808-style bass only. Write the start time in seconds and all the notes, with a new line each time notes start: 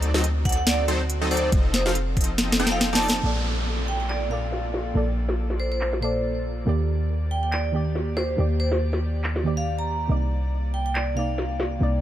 Already playing: D2
1.52 F1
3.24 A#1
4.95 A#1
6.67 D#2
8.38 D#2
10.10 C2
11.81 C2